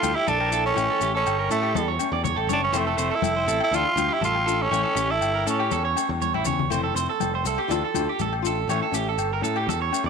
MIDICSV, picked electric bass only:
0, 0, Header, 1, 2, 480
1, 0, Start_track
1, 0, Tempo, 495868
1, 734, Time_signature, 4, 2, 24, 8
1, 9773, End_track
2, 0, Start_track
2, 0, Title_t, "Picked electric bass"
2, 0, Program_c, 0, 34
2, 31, Note_on_c, 0, 38, 85
2, 134, Note_off_c, 0, 38, 0
2, 267, Note_on_c, 0, 34, 84
2, 690, Note_off_c, 0, 34, 0
2, 739, Note_on_c, 0, 33, 97
2, 847, Note_off_c, 0, 33, 0
2, 978, Note_on_c, 0, 33, 90
2, 1190, Note_off_c, 0, 33, 0
2, 1220, Note_on_c, 0, 31, 90
2, 1432, Note_off_c, 0, 31, 0
2, 1455, Note_on_c, 0, 45, 81
2, 1669, Note_off_c, 0, 45, 0
2, 1694, Note_on_c, 0, 40, 81
2, 1908, Note_off_c, 0, 40, 0
2, 2050, Note_on_c, 0, 40, 102
2, 2267, Note_off_c, 0, 40, 0
2, 2288, Note_on_c, 0, 33, 80
2, 2387, Note_off_c, 0, 33, 0
2, 2393, Note_on_c, 0, 30, 92
2, 2617, Note_off_c, 0, 30, 0
2, 2635, Note_on_c, 0, 29, 100
2, 2857, Note_off_c, 0, 29, 0
2, 2881, Note_on_c, 0, 29, 89
2, 2996, Note_off_c, 0, 29, 0
2, 3117, Note_on_c, 0, 29, 96
2, 3339, Note_off_c, 0, 29, 0
2, 3353, Note_on_c, 0, 33, 97
2, 3472, Note_off_c, 0, 33, 0
2, 3594, Note_on_c, 0, 38, 79
2, 3712, Note_off_c, 0, 38, 0
2, 3831, Note_on_c, 0, 38, 89
2, 3951, Note_off_c, 0, 38, 0
2, 4076, Note_on_c, 0, 33, 89
2, 4513, Note_off_c, 0, 33, 0
2, 4563, Note_on_c, 0, 33, 105
2, 4677, Note_off_c, 0, 33, 0
2, 4795, Note_on_c, 0, 33, 84
2, 5018, Note_off_c, 0, 33, 0
2, 5044, Note_on_c, 0, 31, 86
2, 5262, Note_off_c, 0, 31, 0
2, 5291, Note_on_c, 0, 45, 80
2, 5507, Note_off_c, 0, 45, 0
2, 5530, Note_on_c, 0, 40, 83
2, 5746, Note_off_c, 0, 40, 0
2, 5897, Note_on_c, 0, 40, 97
2, 6112, Note_off_c, 0, 40, 0
2, 6136, Note_on_c, 0, 33, 79
2, 6241, Note_off_c, 0, 33, 0
2, 6247, Note_on_c, 0, 40, 84
2, 6465, Note_off_c, 0, 40, 0
2, 6487, Note_on_c, 0, 29, 95
2, 6705, Note_off_c, 0, 29, 0
2, 6718, Note_on_c, 0, 29, 84
2, 6835, Note_off_c, 0, 29, 0
2, 6974, Note_on_c, 0, 29, 85
2, 7189, Note_off_c, 0, 29, 0
2, 7210, Note_on_c, 0, 36, 99
2, 7322, Note_off_c, 0, 36, 0
2, 7452, Note_on_c, 0, 38, 87
2, 7563, Note_off_c, 0, 38, 0
2, 7692, Note_on_c, 0, 38, 81
2, 7803, Note_off_c, 0, 38, 0
2, 7933, Note_on_c, 0, 33, 88
2, 8364, Note_off_c, 0, 33, 0
2, 8399, Note_on_c, 0, 33, 100
2, 8516, Note_off_c, 0, 33, 0
2, 8638, Note_on_c, 0, 33, 92
2, 8861, Note_off_c, 0, 33, 0
2, 8884, Note_on_c, 0, 31, 85
2, 9104, Note_off_c, 0, 31, 0
2, 9121, Note_on_c, 0, 45, 83
2, 9343, Note_off_c, 0, 45, 0
2, 9359, Note_on_c, 0, 40, 82
2, 9582, Note_off_c, 0, 40, 0
2, 9721, Note_on_c, 0, 40, 104
2, 9773, Note_off_c, 0, 40, 0
2, 9773, End_track
0, 0, End_of_file